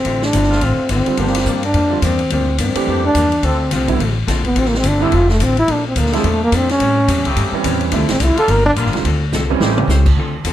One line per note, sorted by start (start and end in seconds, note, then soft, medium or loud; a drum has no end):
0.00 0.26 C4 medium
0.05 0.32 A1 medium
0.05 0.23 D3 medium
0.05 0.24 A3 medium
0.05 0.24 C4 soft
0.05 0.25 F4 medium
0.05 kick soft
0.05 ride medium
0.22 0.66 D4 loud
0.22 snare medium
0.33 0.60 G1 medium
0.33 0.52 D3 medium
0.33 0.49 D3 soft
0.33 0.49 G3 soft
0.33 0.52 A3 medium
0.33 0.49 C4 soft
0.33 0.52 C4 medium
0.33 0.50 E4 medium
0.33 0.52 F4 medium
0.33 kick soft
0.33 hi-hat pedal medium
0.33 ride medium
0.43 snare soft
0.50 0.87 D3 loud
0.50 0.88 A3 medium
0.50 0.88 C4 medium
0.50 0.88 F4 loud
0.50 snare soft
0.61 0.77 A1 medium
0.61 0.80 D3 soft
0.61 0.80 A3 soft
0.61 0.81 C4 soft
0.61 0.91 C4 medium
0.61 0.81 F4 medium
0.61 kick soft
0.61 ride medium
0.78 muted upright bass stroke soft
0.89 1.05 G#1 medium
0.89 1.08 D3 medium
0.89 1.08 A3 medium
0.89 1.08 C4 medium
0.89 1.19 C4 medium
0.89 1.09 F4 medium
0.89 kick soft
0.89 hi-hat pedal soft
0.89 ride medium
1.06 1.44 D3 medium
1.06 1.44 G3 medium
1.06 1.44 C4 medium
1.06 1.45 F4 medium
1.06 muted upright bass stroke soft
1.06 ride soft
1.17 1.45 G1 medium
1.17 1.36 G2 medium
1.17 1.36 F3 medium
1.17 1.96 F3 loud
1.17 1.95 A#3 medium
1.17 1.36 A#3 medium
1.17 1.61 C4 medium
1.17 1.96 D4 medium
1.17 1.37 D4 medium
1.17 1.96 G4 loud
1.17 kick soft
1.17 ride medium
1.27 snare soft
1.35 snare soft
1.35 ride medium
1.46 1.73 G2 medium
1.46 1.64 G2 medium
1.46 1.64 F3 medium
1.46 1.65 A#3 medium
1.46 1.65 D4 medium
1.46 kick soft
1.46 hi-hat pedal medium
1.63 2.06 D4 loud
1.63 ride medium
1.74 2.01 F2 medium
1.74 1.92 G2 soft
1.74 1.93 F3 medium
1.74 1.93 A#3 soft
1.74 1.94 D4 medium
1.74 kick soft
1.74 ride medium
1.90 2.01 D3 medium
1.90 2.01 G3 medium
1.90 2.01 C4 medium
1.90 2.02 F4 medium
2.02 2.29 E2 loud
2.02 2.21 G2 medium
2.02 2.21 F3 medium
2.02 2.21 A#3 medium
2.02 2.31 C4 medium
2.02 2.21 D4 medium
2.02 kick soft
2.02 hi-hat pedal medium
2.02 ride medium
2.19 ride soft
2.30 2.57 D2 medium
2.30 2.48 G2 medium
2.30 2.49 F3 medium
2.30 2.49 A#3 medium
2.30 2.60 C4 medium
2.30 2.50 D4 medium
2.30 kick soft
2.30 ride medium
2.58 2.74 G2 medium
2.58 2.77 G2 medium
2.58 2.77 F3 medium
2.58 2.77 A#3 medium
2.58 3.01 C4 medium
2.58 2.77 D4 medium
2.58 kick soft
2.58 hi-hat pedal medium
2.58 ride medium
2.75 3.13 E3 medium
2.75 3.13 A3 medium
2.75 3.13 D4 medium
2.75 3.13 G4 medium
2.75 muted upright bass stroke soft
2.75 ride medium
2.86 3.14 F2 medium
2.86 3.04 G2 soft
2.86 3.05 F3 soft
2.86 3.05 A#3 soft
2.86 3.29 D4 medium
2.86 3.05 D4 soft
2.86 3.29 G4 loud
2.86 kick soft
3.06 3.47 D4 loud
3.15 3.42 E2 medium
3.15 3.33 G2 medium
3.15 3.33 F3 medium
3.15 3.34 A#3 medium
3.15 3.34 D4 medium
3.15 kick soft
3.15 hi-hat pedal medium
3.15 ride medium
3.32 ride soft
3.42 3.70 D2 medium
3.42 3.61 D3 soft
3.42 3.70 F3 medium
3.42 3.61 A3 soft
3.42 3.69 C4 medium
3.42 3.62 C4 medium
3.42 3.72 C4 medium
3.42 3.69 D4 medium
3.42 3.62 F4 medium
3.42 3.70 A4 loud
3.42 kick soft
3.42 ride medium
3.70 3.98 C2 medium
3.70 3.89 D3 medium
3.70 3.82 F3 medium
3.70 3.89 A3 medium
3.70 3.82 C4 medium
3.70 3.89 C4 medium
3.70 4.14 C4 medium
3.70 3.82 D4 medium
3.70 3.82 F4 medium
3.70 3.90 F4 medium
3.70 kick soft
3.70 hi-hat pedal medium
3.70 ride medium
3.88 3.98 D3 medium
3.88 3.98 G3 medium
3.88 3.98 C4 medium
3.88 3.99 E4 medium
3.88 kick medium
3.88 ride medium
3.99 4.26 A1 medium
3.99 4.17 D3 soft
3.99 4.17 A3 soft
3.99 4.18 C4 soft
3.99 4.18 F4 medium
3.99 ride medium
4.27 4.54 A#1 medium
4.27 4.45 D3 medium
4.27 4.45 A3 medium
4.27 4.46 C4 medium
4.27 4.46 F4 medium
4.27 kick soft
4.27 snare soft
4.27 hi-hat pedal medium
4.27 ride medium
4.44 4.60 B3 medium
4.44 kick medium
4.44 ride soft
4.55 4.82 A1 medium
4.55 4.73 D3 medium
4.55 4.74 A3 medium
4.55 4.74 C4 medium
4.55 4.69 C4 medium
4.55 4.74 F4 medium
4.55 kick soft
4.55 ride medium
4.65 4.79 A#3 medium
4.65 snare soft
4.74 4.89 C4 medium
4.74 snare medium
4.83 5.10 G1 medium
4.83 5.02 D3 medium
4.83 5.02 A3 medium
4.83 5.02 C4 medium
4.83 5.02 F4 medium
4.83 kick soft
4.83 hi-hat pedal medium
4.83 ride medium
4.88 5.05 D4 medium
5.00 5.10 D3 medium
5.00 5.38 F3 loud
5.00 5.11 G3 medium
5.00 5.38 C4 medium
5.00 5.11 C4 medium
5.00 5.38 D4 loud
5.00 5.11 E4 medium
5.00 5.17 E4 medium
5.00 5.38 A4 loud
5.11 5.39 F1 medium
5.11 5.29 D3 soft
5.11 5.30 A3 soft
5.11 5.30 C4 soft
5.11 5.31 F4 medium
5.11 5.30 F4 loud
5.11 kick soft
5.11 ride medium
5.29 5.44 A3 medium
5.29 snare medium
5.39 5.67 A1 medium
5.39 5.58 D3 medium
5.39 5.58 A3 medium
5.39 5.58 C4 medium
5.39 5.59 F4 medium
5.39 kick soft
5.39 hi-hat pedal medium
5.39 ride medium
5.57 5.74 E4 loud
5.57 ride soft
5.67 5.95 A#1 medium
5.67 5.85 A#2 medium
5.67 5.86 F3 medium
5.67 5.86 A3 medium
5.67 5.87 D4 medium
5.67 kick soft
5.67 ride medium
5.73 5.87 D4 medium
5.87 6.01 C4 medium
5.95 6.23 D2 medium
5.95 6.14 A#2 medium
5.95 6.15 F3 medium
5.95 6.15 A3 medium
5.95 6.15 D4 medium
5.95 kick soft
5.95 hi-hat pedal medium
5.95 ride medium
5.99 6.17 A#3 medium
6.06 snare soft
6.12 6.23 D3 medium
6.12 6.50 F3 loud
6.12 6.23 G3 medium
6.12 6.29 G#3 medium
6.12 6.49 A#3 medium
6.12 6.23 C4 medium
6.12 6.50 D4 medium
6.12 6.23 E4 medium
6.12 6.50 A4 loud
6.12 snare soft
6.12 ride medium
6.23 6.51 E2 medium
6.23 6.42 A#2 soft
6.23 6.42 F3 soft
6.23 6.43 A3 medium
6.23 6.42 A3 medium
6.23 6.43 D4 medium
6.23 kick soft
6.23 ride medium
6.44 6.57 A#3 loud
6.52 6.79 F2 medium
6.52 6.70 A#2 medium
6.52 6.70 F3 medium
6.52 6.71 A3 medium
6.52 6.71 D4 medium
6.52 kick soft
6.52 hi-hat pedal medium
6.52 ride medium
6.56 6.71 C4 medium
6.69 7.33 C#4 loud
6.69 snare soft
6.69 ride soft
6.80 7.07 A2 medium
6.80 6.98 A2 medium
6.80 6.99 G3 medium
6.80 6.99 C4 medium
6.80 6.99 C#4 medium
6.80 kick soft
6.80 ride medium
7.08 7.16 F2 medium
7.08 7.26 A2 medium
7.08 7.27 G3 medium
7.08 7.27 C4 medium
7.08 7.27 C#4 medium
7.08 kick soft
7.08 hi-hat pedal medium
7.08 ride medium
7.16 7.25 E2 medium
7.25 7.35 C#2 medium
7.25 7.62 C#3 loud
7.25 7.62 A3 loud
7.25 7.62 C4 loud
7.25 7.62 G4 loud
7.25 ride medium
7.36 7.51 G2 loud
7.36 7.54 A2 medium
7.36 7.54 G3 medium
7.36 7.55 C4 medium
7.36 7.55 C#4 medium
7.36 kick soft
7.36 ride medium
7.52 7.90 E3 medium
7.52 7.90 G3 medium
7.52 7.91 C4 medium
7.52 7.91 C#4 medium
7.52 muted upright bass stroke soft
7.64 7.91 E2 loud
7.64 7.82 A2 medium
7.64 7.82 G3 medium
7.64 7.83 C4 medium
7.64 7.83 C#4 medium
7.64 kick soft
7.64 hi-hat pedal medium
7.64 ride medium
7.81 ride soft
7.92 8.00 D2 medium
7.92 8.07 D3 medium
7.92 8.10 D3 medium
7.92 8.07 G3 medium
7.92 8.11 A3 medium
7.92 8.08 C4 medium
7.92 8.11 C4 medium
7.92 8.08 E4 medium
7.92 8.12 F4 medium
7.92 kick soft
7.92 ride medium
7.96 8.10 A3 medium
8.00 8.09 C2 medium
8.09 8.19 A1 medium
8.09 8.25 C4 medium
8.09 snare medium
8.09 ride medium
8.20 8.36 C2 loud
8.20 8.39 D3 medium
8.20 8.39 A3 medium
8.20 8.39 C4 medium
8.20 8.38 E4 medium
8.20 8.40 F4 medium
8.20 kick soft
8.20 hi-hat pedal medium
8.20 ride medium
8.36 8.74 D3 loud
8.36 8.74 G3 loud
8.36 8.74 A#3 loud
8.36 8.74 F4 loud
8.36 8.52 A4 loud
8.36 muted upright bass stroke soft
8.36 ride medium
8.48 8.75 G1 medium
8.48 8.67 G2 soft
8.48 8.67 F3 medium
8.48 8.68 A#3 medium
8.48 8.68 D4 medium
8.48 8.65 A#4 medium
8.48 kick soft
8.48 ride medium
8.66 8.72 D4 loud
8.76 8.86 A#1 loud
8.76 8.95 G2 medium
8.76 9.05 D3 loud
8.76 8.95 F3 medium
8.76 9.05 G3 loud
8.76 9.05 A#3 loud
8.76 8.95 A#3 medium
8.76 8.95 D4 medium
8.76 9.05 F4 loud
8.76 kick soft
8.76 hi-hat pedal medium
8.76 ride medium
8.86 8.95 G1 medium
8.86 snare soft
8.93 9.04 F1 medium
8.93 9.03 D3 medium
8.93 9.04 G3 medium
8.93 9.04 C4 medium
8.93 9.04 F4 medium
8.93 snare soft
8.93 ride soft
9.05 9.32 D2 loud
9.05 9.23 D3 medium
9.05 9.23 C4 medium
9.05 9.23 F4 medium
9.05 9.24 A4 medium
9.05 kick soft
9.05 ride medium
9.32 9.60 C2 loud
9.32 9.51 D3 medium
9.32 9.51 C4 medium
9.32 9.51 F4 medium
9.32 9.52 A4 medium
9.32 snare medium
9.32 hi-hat pedal medium
9.50 9.87 E3 medium
9.50 9.87 G3 medium
9.50 9.87 C4 medium
9.50 9.87 C#4 loud
9.60 9.87 A1 medium
9.60 10.03 C#3 medium
9.60 9.79 A3 soft
9.60 10.03 A3 medium
9.60 9.79 C#4 medium
9.60 10.03 G4 loud
9.60 9.79 G4 medium
9.60 9.80 C5 medium
9.60 snare medium
9.78 mid tom medium
9.88 10.15 C#2 loud
9.88 10.07 A3 medium
9.88 10.07 C#4 medium
9.88 10.08 G4 medium
9.88 10.08 C5 medium
9.88 snare medium
9.88 hi-hat pedal medium
10.06 kick medium
10.06 crash medium
10.16 10.43 D2 medium
10.16 10.35 D3 medium
10.16 10.35 C4 medium
10.16 10.36 F4 medium
10.16 10.36 A4 medium
10.16 kick soft
10.44 10.53 E2 medium
10.44 10.53 D3 medium
10.44 10.53 C4 medium
10.44 10.53 F4 medium
10.44 10.53 A4 medium
10.44 kick soft
10.44 hi-hat pedal medium
10.44 ride medium